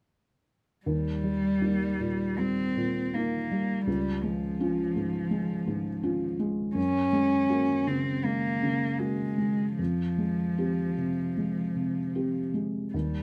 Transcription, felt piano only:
0.86 2.35 D#2 soft
1.24 1.85 G3 soft
1.61 1.97 A#3 soft
1.61 1.97 D#4 soft
2.00 2.62 A#2 soft
2.39 2.99 G3 soft
2.77 3.36 A#2 soft
3.15 3.47 A#3 soft
3.15 3.48 D#4 soft
3.51 3.87 G3 soft
3.87 5.27 C#2 soft
4.23 4.81 G#3 soft
4.60 4.92 C#4 soft
4.60 4.92 F4 soft
4.96 5.53 G#2 soft
5.31 5.89 G#3 soft
5.67 6.25 G#2 soft
6.03 6.36 C#4 soft
6.03 6.36 F4 soft
6.39 6.76 G#3 soft
6.75 8.20 F#2 soft
7.13 7.73 G#3 soft
7.49 7.83 A#3 soft
7.49 7.84 F#4 soft
7.87 8.48 C#3 soft
8.24 8.85 G#3 soft
8.63 9.24 C#3 soft
8.99 9.35 A#3 soft
8.99 9.35 F#4 soft
9.38 9.78 G#3 soft
9.79 11.32 F2 soft
10.18 10.81 G#3 soft
10.58 10.93 C4 soft
10.58 10.93 G4 soft
10.98 11.60 C3 soft
11.37 11.99 G#3 soft
11.76 12.38 C3 soft
12.15 12.51 C4 soft
12.15 12.51 G4 soft
12.54 12.94 G#3 soft
12.94 13.23 D#2 soft

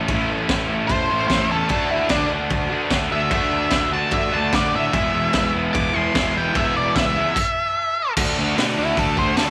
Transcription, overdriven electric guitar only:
0.00 0.12 A3 medium
0.00 0.12 C#4 medium
0.00 0.13 E4 medium
0.10 0.90 A2 loud
0.10 0.90 E3 loud
0.10 0.72 A3 loud
0.10 0.69 C#4 loud
0.14 0.67 E4 loud
0.68 1.13 A3 medium
0.68 1.10 C#4 medium
0.68 1.08 E4 medium
1.09 1.31 A3 medium
1.09 1.31 C#4 medium
1.09 1.32 E4 medium
1.29 1.68 E3 medium
1.29 1.53 A3 medium
1.29 1.51 C#4 medium
1.34 1.49 E4 medium
1.50 1.71 A3 medium
1.50 1.70 C#4 medium
1.50 1.69 E4 medium
1.70 2.91 D3 loud
1.70 2.33 A3 medium
1.70 2.32 D4 loud
1.70 2.29 F#4 loud
2.30 2.72 A3 medium
2.30 2.71 D4 medium
2.30 2.68 F#4 medium
2.70 2.93 D4 medium
2.70 2.94 F#4 medium
2.74 2.92 A3 medium
2.91 3.29 D3 medium
2.91 3.14 A3 medium
2.91 3.12 D4 medium
2.91 3.10 F#4 medium
3.11 3.32 D4 medium
3.11 3.34 F#4 medium
3.15 3.31 A3 medium
3.30 4.12 D3 loud
3.30 3.95 A3 loud
3.30 3.92 D4 loud
3.35 3.90 F#4 loud
3.92 4.33 D4 medium
3.92 4.30 F#4 medium
3.96 4.35 A3 medium
4.31 4.54 D4 medium
4.31 4.55 F#4 medium
4.36 4.53 A3 medium
4.53 4.92 D3 medium
4.53 4.76 A3 medium
4.53 4.75 D4 medium
4.53 4.72 F#4 medium
4.73 4.93 D4 medium
4.73 4.92 F#4 medium
4.77 4.94 A3 medium
4.92 6.14 E3 loud
4.92 5.57 G#3 loud
4.92 5.55 B3 loud
4.92 5.52 E4 loud
5.53 5.94 B3 medium
5.53 5.92 E4 medium
5.57 5.97 G#3 medium
5.94 6.17 B3 medium
5.94 6.18 E4 medium
5.98 6.15 G#3 medium
6.14 6.53 E3 medium
6.14 6.38 G#3 medium
6.14 6.36 B3 medium
6.19 6.33 E4 medium
6.34 6.55 B3 medium
6.34 6.57 E4 medium
6.39 6.54 G#3 medium
6.54 7.34 E3 loud
6.54 7.18 G#3 loud
6.54 7.16 B3 loud
6.58 7.14 E4 loud
7.16 7.36 G#3 medium
7.16 7.35 B3 medium
7.16 7.34 E4 medium
8.17 8.37 D3 loud
8.17 8.38 A3 loud
8.17 8.39 D4 loud
8.17 8.39 F#4 loud
8.37 8.55 D3 medium
8.37 8.56 A3 medium
8.37 8.57 D4 loud
8.37 8.58 F#4 loud
8.56 8.77 D3 medium
8.56 8.78 A3 loud
8.56 8.78 D4 medium
8.56 8.79 F#4 medium
8.78 8.94 D3 medium
8.78 8.96 A3 medium
8.78 8.96 D4 medium
8.78 8.97 F#4 medium
8.95 9.15 D3 medium
8.95 9.16 A3 medium
8.95 9.17 D4 loud
8.95 9.17 F#4 loud
9.16 9.35 D3 medium
9.16 9.36 A3 medium
9.16 9.37 D4 medium
9.16 9.38 F#4 loud
9.36 9.50 D3 medium
9.36 9.50 A3 medium
9.36 9.50 D4 medium
9.36 9.50 F#4 loud

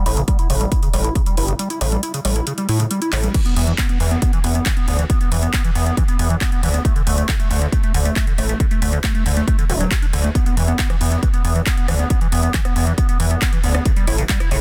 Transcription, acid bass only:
0.06 0.15 E4 medium
0.17 0.23 C#3 medium
0.28 0.37 G3 medium
0.39 0.48 E4 medium
0.50 0.56 C#3 medium
0.61 0.70 G3 medium
0.72 0.81 E4 medium
0.83 0.89 C#3 medium
0.94 1.03 G3 medium
1.04 1.14 E4 medium
1.15 1.22 C#3 medium
1.26 1.36 G3 medium
1.37 1.47 E4 medium
1.48 1.55 C#3 medium
1.59 1.69 G3 medium
1.70 1.80 E4 medium
1.81 1.88 C#3 medium
1.92 2.02 G3 medium
2.03 2.12 E4 medium
2.14 2.20 C#3 medium
2.25 2.34 G3 medium
2.36 2.45 E4 medium
2.47 2.53 C#3 medium
2.58 2.67 G3 medium
2.69 2.78 E4 medium
2.80 2.86 C#3 medium
2.91 3.00 G3 medium
3.02 3.11 E4 medium
3.13 3.19 C#3 medium
3.24 3.33 G3 medium
3.35 3.41 E3 medium
3.46 3.55 B3 medium
3.56 3.66 B3 medium
3.67 3.74 E3 medium
3.78 3.88 B3 medium
3.89 3.99 B3 medium
4.00 4.06 E3 medium
4.11 4.21 B3 medium
4.22 4.32 B3 medium
4.33 4.39 E3 medium
4.44 4.53 B3 medium
4.55 4.64 B3 medium
4.66 4.72 E3 medium
4.77 4.86 B3 medium
4.88 4.97 B3 medium
4.99 5.05 E3 medium
5.10 5.19 B3 medium
5.21 5.30 B3 medium
5.32 5.38 E3 medium
5.43 5.52 B3 medium
5.65 5.71 E3 medium
5.75 5.85 B3 medium
5.86 5.96 B3 medium
5.97 6.04 E3 medium
6.08 6.18 B3 medium
6.19 6.29 B3 medium
6.30 6.36 E3 medium
6.41 6.50 B3 medium
6.52 6.61 B3 medium
6.63 6.69 E3 medium
6.74 6.83 B3 medium
6.85 6.94 A3 medium
6.96 7.02 D3 medium
7.07 7.16 A3 medium
7.18 7.27 A3 medium
7.29 7.35 D3 medium
7.40 7.49 A3 medium
7.51 7.60 A3 medium
7.61 7.68 D3 medium
7.73 7.82 A3 medium
7.83 7.93 A3 medium
7.94 8.01 D3 medium
8.05 8.15 A3 medium
8.27 8.33 D3 medium
8.38 8.48 A3 medium
8.49 8.59 A3 medium
8.60 8.66 D3 medium
8.71 8.80 A3 medium
8.82 8.91 A3 medium
8.93 8.99 D3 medium
9.04 9.13 A3 medium
9.15 9.24 A3 medium
9.26 9.32 D3 medium
9.37 9.46 A3 medium
9.48 9.57 A3 medium
9.59 9.65 D3 medium
9.70 9.73 D3 loud
9.80 9.90 F#3 loud
9.91 9.95 F#4 medium
10.02 10.06 D4 medium
10.13 10.17 D3 loud
10.24 10.31 A3 medium
10.35 10.45 B3 medium
10.46 10.56 B3 medium
10.57 10.63 E3 medium
10.68 10.77 B3 medium
10.90 10.96 E3 medium
11.01 11.10 B3 medium
11.12 11.21 B3 medium
11.23 11.29 E3 medium
11.34 11.43 B3 medium
11.45 11.54 B3 medium
11.55 11.62 E3 medium
11.67 11.76 B3 medium
11.77 11.87 B3 medium
11.88 11.95 E3 medium
11.99 12.09 B3 medium
12.10 12.20 B3 medium
12.21 12.28 E3 medium
12.32 12.42 B3 medium
12.43 12.53 B3 medium
12.54 12.60 E3 medium
12.65 12.74 B3 medium
12.76 12.85 B3 medium
12.87 12.93 E3 medium
12.98 13.07 B3 medium
13.09 13.18 B3 medium
13.20 13.26 E3 medium
13.31 13.40 B3 medium
13.53 13.59 E3 medium
13.64 13.73 B3 medium
13.75 13.84 B3 medium
13.86 13.92 C#3 medium
13.97 14.06 G3 medium
14.07 14.17 E4 medium
14.18 14.25 C#3 medium
14.29 14.39 G3 medium
14.40 14.50 E4 medium
14.51 14.58 C#3 medium

